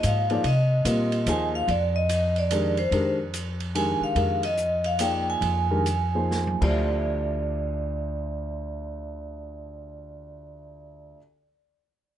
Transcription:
Already playing: F3 A#3 D#4 G#4 C5
0.03 G#2 F5, hi-hat pedal, ride
0.30 F3 A#3 D#4 G#4 D5, ride
0.44 C3 D#5, ride
0.85 A#2 G3 C4 F4 A#4 D#5, hi-hat pedal, ride
1.12 ride
1.26 D#2 F3 A#3 D#4 G#4 C5 G#5, hi-hat pedal, ride
1.55 F5
1.68 F2 D5, ride
1.96 D#5
2.09 hi-hat pedal, ride
2.36 D5, ride
2.51 D#3 G#3 D4 G4 A#4, hi-hat pedal, ride
2.77 C5, ride
2.91 F2 D#3 G#3 D4 G4 A#4, ride
3.34 hi-hat pedal, ride
3.60 ride
3.75 D#3 G#3 D4 G4 A#4 G#5, ride
4.00 F5, muted upright bass stroke
4.15 F2 D#3 G#3 D4 G4 A#4, ride
4.43 D#5, ride
4.57 hi-hat pedal
4.84 F5, ride
4.99 F3 A#3 D#4 G#4 D5 G5, hi-hat pedal, ride
5.30 G#5
5.41 F2, ride
5.70 D#3 G#3 D4 G4 A#4
5.86 hi-hat pedal, ride
6.15 F3 A#3 D#4 G#4 C5
6.31 snare
6.47 high tom
6.61 D2 D3 F3 E4 G4 C5 D5, kick, crash

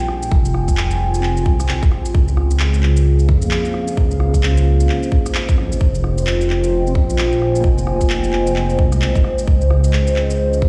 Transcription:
Already playing: A#1 G3 F4 C5 D#5 G5 G#5
0.08 cross-stick
0.23 shaker
0.31 F1, kick
0.45 shaker
0.54 cross-stick
0.68 kick, shaker
0.77 clap
0.91 shaker
1.14 shaker
1.20 C4, clap
1.37 shaker
1.42 C2 C4, kick
1.60 cross-stick, shaker
1.69 C2, clap
1.83 F1, kick, shaker
1.91 cross-stick
2.05 shaker
2.14 C#2 C#4, kick
2.28 shaker
2.37 G#4 C5, cross-stick
2.51 shaker
2.60 clap
2.74 D#5, shaker
2.83 clap
2.97 shaker
3.05 F5
3.19 shaker
3.28 F2, kick
3.42 A#3, shaker
3.51 clap
3.65 shaker
3.74 cross-stick
3.88 shaker
3.97 C#2, kick
4.11 shaker
4.20 cross-stick
4.34 kick, shaker
4.43 C#4, clap
4.51 F4
4.57 shaker
4.80 shaker
4.89 clap
5.03 shaker
5.12 kick
5.26 cross-stick, shaker
5.35 clap
5.49 kick, shaker
5.56 F2 C#4, cross-stick
5.72 G#1, shaker
5.80 F1 F4, kick
5.94 G5, shaker
6.04 cross-stick
6.18 shaker
6.27 clap
6.41 shaker
6.50 clap
6.64 shaker
6.87 C4, shaker
6.95 A#1, kick
7.10 G#5, shaker
7.18 clap
7.32 shaker
7.42 cross-stick
7.55 shaker
7.60 F1 A#3, kick
7.78 shaker
7.87 cross-stick
8.01 kick, shaker
8.10 clap
8.24 shaker
8.33 clap
8.47 shaker
8.56 clap
8.70 shaker
8.79 C2, kick
8.92 G#3, cross-stick, shaker
9.01 C2, clap
9.15 F1, kick, shaker
9.24 cross-stick
9.38 shaker
9.47 C#2 C#4, kick
9.61 shaker
9.67 G#4, cross-stick
9.84 shaker
9.93 clap
10.07 shaker
10.14 F5, clap
10.30 shaker
10.53 shaker
10.62 F2, kick

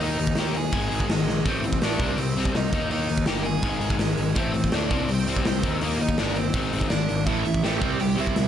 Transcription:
0.00 D#2 D#3 A#3 D#4 D#5, open hi-hat
0.04 D#4
0.19 D#2 D#3 A#3, open hi-hat
0.27 kick
0.35 D#2 D#3 A#3 D#4 G4, snare, open hi-hat
0.39 G5
0.54 D#3 A#3 G#4 G#5, open hi-hat
0.72 G#1 G#2 D#3 G#3, kick, open hi-hat
0.89 G#1 G#2 D#3 G#3, open hi-hat
1.00 kick
1.08 G#1 G#2 D#3 G#4, snare, open hi-hat
1.12 G#3
1.25 A#1 G#2 D#3, snare
1.45 A1 A2 E3 A3 C4 C5, kick, open hi-hat
1.62 A1 A2 E3, open hi-hat
1.73 kick
1.82 A1 A2 E3 A3 D4 D5, snare, open hi-hat
1.99 C2 C3 G3 C4, kick, open hi-hat
2.18 C2 C3 G3 C4 C5, open hi-hat
2.36 C2 C3 G3 C4, open hi-hat
2.45 kick
2.54 C2 C3 G3 D#4 D#5, snare, open hi-hat
2.73 D#2 D#3 A#3 D#4, kick, open hi-hat
2.90 D#2 D#3 A#3 D#4 D#5, open hi-hat
3.09 D#2 D#3 A#3, open hi-hat
3.18 kick
3.26 G1 D#3 A#3 D#4 G4 G5, snare, open hi-hat
3.44 D#3 A#3 G#4 G#5, open hi-hat
3.62 G#1 G#2 D#3 G#3, kick, open hi-hat
3.81 G#1 G#2 D#3 G#3, open hi-hat
3.90 kick
3.98 G#1 G#2 D#3 G#3 G#4, snare, open hi-hat
4.17 G#1 G#2 D#3, open hi-hat
4.35 A1 A2 E3 A3 C4 C5, kick, open hi-hat
4.54 A1 A2 E3, open hi-hat
4.64 kick
4.72 D2 A2 E3 A3 D4 D5, snare, open hi-hat
4.90 C2 C3 G3 C4, kick, open hi-hat
5.08 C2 C3 G3 C4, open hi-hat
5.12 C5
5.26 C2 C3 G3 C4, open hi-hat
5.36 kick
5.45 C2 C3 G3 C4 C5, snare, open hi-hat
5.63 D#2 D#3 A#3 D#4, kick, open hi-hat
5.81 D#2 D#3 A#3 D#4 A#4, open hi-hat
5.99 D#2 D#3 A#3 D#4 D#5, open hi-hat
6.09 kick
6.18 G1 D#3 A#3 D4 D#4 D5, snare, open hi-hat
6.36 D#3 A#3 C4 C5, open hi-hat
6.53 G#1 G#2 D#3 G#3, kick, open hi-hat
6.72 G#1 G#2 D#3 G#3, open hi-hat
6.81 kick
6.90 G#1 G#2 D#3 D4 D5, snare, open hi-hat
7.09 G#1 G#2 D#3, open hi-hat
7.26 A1 A2 E3 A3 E4 E5, kick, open hi-hat
7.45 A1 A2 E3, open hi-hat
7.54 kick
7.63 A1 A2 E3 A3 G4 G5, snare, open hi-hat
7.81 C2 C3 G3 C4, kick, open hi-hat
8.00 C2 C3 G3 G4 G5, open hi-hat
8.15 C2 C3 G3 C4, open hi-hat
8.20 E4 E5
8.27 kick
8.35 D2 C3 G3, snare, open hi-hat

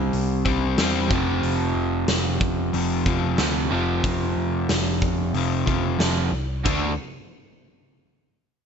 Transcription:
Already playing: C3 G3 C4
0.13 C2, open hi-hat
0.45 C2 C3 G3 C4, kick
0.78 E2 C3 G3, snare, open hi-hat
0.82 C4
1.10 F1 F2 C3 F3, kick
1.43 F1, open hi-hat
1.75 F1
2.08 F1, snare, open hi-hat
2.40 F1, kick
2.73 F1 F2 C3 F3, open hi-hat
3.06 F2 C3 F3, kick
3.37 D2 F2 C3 F3, snare, open hi-hat
3.71 F1 F2 C3 F3
4.03 F1, kick, open hi-hat
4.36 F2
4.69 F1, snare, open hi-hat
5.02 kick
5.34 F1 F2 C3 F3, open hi-hat
5.66 F1 F2 C3 F3, kick
5.99 F1 F2 C3 F3, snare, open hi-hat
6.30 C2
6.65 D2 D3 A3 D4, kick, crash

